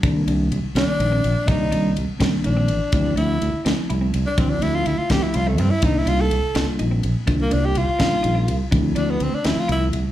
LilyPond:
<<
  \new Staff \with { instrumentName = "Tenor saxophone" } { \time 6/8 \key c \dorian \tempo 4. = 83 r4. d'4. | ees'4 r4 d'4~ | d'8 e'4 r4 r16 d'16 | c'16 d'16 e'16 f'16 e'16 f'16 g'16 e'16 f'16 a16 c'16 e'16 |
ees'16 e'16 f'16 a'4 r4 r16 | r16 bes16 d'16 g'16 f'2 | r8 d'16 b16 c'16 d'16 e'16 f'16 e'8 r8 | }
  \new Staff \with { instrumentName = "Clean electric guitar" } { \time 6/8 \key c \dorian d'8 d'8 r8 c'8 ees'16 c'8 r16 | d'8 d'8 r8 c'8 ees'16 c'8 r16 | d'8 d'8 r8 c'8 e'16 c'8 r16 | d'8 d'8 r8 c'8 e'16 c'8 r16 |
d'8 d'8 r8 c'8 ees'16 c'8 r16 | d'8 d'8 r8 c'8 ees'16 c'8 r16 | d'8 d'8 r8 c'8 e'16 c'8 r16 | }
  \new Staff \with { instrumentName = "Tine electric piano" } { \time 6/8 \key c \dorian <ees g bes d'>4 r8 <ees g bes d'>4 r8 | <ees g bes d''>4 r8 <ees g bes d'>4 r8 | <f a c' e'>4 r8 <f a c' e'>4 r8 | <f a c' e'>4 r8 <f a c' f'>4 r8 |
<g bes d' ees'>4 r8 <g bes d' f'>4 r8 | <g bes d' f'>4 r8 <g bes d' ees'>4 r8 | <f a c' e'>4 r8 <f a c' f'>4 r8 | }
  \new Staff \with { instrumentName = "Fingered electric bass" } { \clef bass \time 6/8 \key c \dorian c,8 c,8 c,16 r16 c,16 r16 bes,,8 bes,,16 r16 | c,8 c,8 c,16 r16 c,16 r16 bes,,8 a,,16 r16 | d,8 d,8 d,16 r16 d,16 r16 c,8 c,16 r16 | d,8 d,8 d,16 r16 d,16 r16 c,8 g,16 r16 |
c,8 c,8 c,16 r16 c,16 r16 bes,,8 bes,,16 r16 | c,8 c,8 c,16 r16 c,16 r16 bes,,8 c,16 r16 | d,8 d,8 d,16 r16 d,16 r16 c,8 c,16 r16 | }
  \new DrumStaff \with { instrumentName = "Drums" } \drummode { \time 6/8 <bd cymr>8 cymr8 cymr8 <cymr sn>8 cymr8 cymr8 | <bd cymr>8 cymr8 cymr8 <bd cymr sn>8 cymr8 cymr8 | <bd cymr>8 cymr8 cymr8 <cymr sn>8 cymr8 cymr8 | <bd cymr>8 cymr8 cymr8 <bd cymr sn>8 cymr8 cymr8 |
<bd cymr>8 cymr8 cymr8 <cymr sn>8 cymr8 cymr8 | <bd cymr>8 cymr8 cymr8 <bd cymr sn>8 cymr8 cymr8 | <bd cymr>8 cymr8 cymr8 <cymr sn>8 cymr8 cymr8 | }
>>